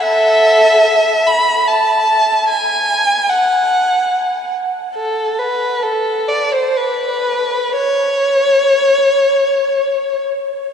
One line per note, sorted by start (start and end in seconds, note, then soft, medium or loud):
0.03 1.23 A4 medium
0.03 1.25 E5 medium
1.26 1.68 B5 medium
1.67 2.50 A5 medium
2.49 3.28 G#5 medium
3.29 4.53 F#5 medium
4.95 5.36 A4 medium
5.38 5.84 B4 medium
5.83 6.30 A4 medium
6.28 6.53 D5 medium
6.53 6.78 C5 medium
6.77 7.78 B4 medium
7.76 10.21 C#5 medium